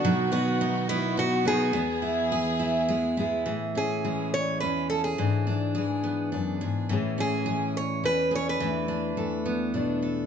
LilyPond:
<<
  \new Staff \with { instrumentName = "Steel-string acoustic guitar" } { \time 3/4 \key a \major \tempo 4 = 105 fis'8 fis'4 e'8 fis'8 gis'8~ | gis'2 r4 | r8 gis'4 cis''8 b'8 a'16 gis'16~ | gis'2~ gis'8 r8 |
r8 gis'4 cis''8 b'8 cis''16 b'16~ | b'2~ b'8 r8 | }
  \new Staff \with { instrumentName = "Steel-string acoustic guitar" } { \time 3/4 \key a \major fis8 b8 dis'8 b8 dis'8 b8 | b8 e'8 gis'8 e'8 gis'8 e'8 | e8 cis'8 gis'4 cis'8 gis'8 | e8 d'8 gis'8 b8 d'8 gis'8 |
e8 cis'8 gis'4 cis'8 gis'8 | e8 d'8 a'8 b8 d'8 a'8 | }
  \new Staff \with { instrumentName = "String section" } { \time 3/4 \key a \major << { <dis fis'>2. | <e gis'>2. | r2. | r2. |
r2. | r2. | } \\ { b2.~ | b2. | r2. | r2. |
r2. | r2. | } >> }
  \new Staff \with { instrumentName = "Steel-string acoustic guitar" } { \clef bass \time 3/4 \key a \major << { dis'2 b8 <b dis' fis'>8 | b2 gis8 <gis b gis'>8 | gis'8 cis'8 gis4 cis'4 | d'8 d'8 gis2 |
<e gis cis' gis'>8 cis'8 gis4 cis'4 | <e a d' e'>8 d'8 a4 d'4 | } \\ { b,2. | e,2. | a,4 e4 e,4 | gis,4 e4 fis,8 gis,8 |
a,4 e4 e,4 | e,4 e4 b,4 | } >> }
>>